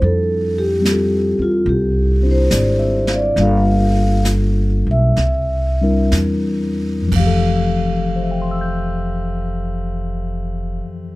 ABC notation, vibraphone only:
X:1
M:4/4
L:1/8
Q:"Swing" 1/4=65
K:F
V:1 name="Vibraphone"
A G2 F G c2 d | f2 z e3 z2 | f8 |]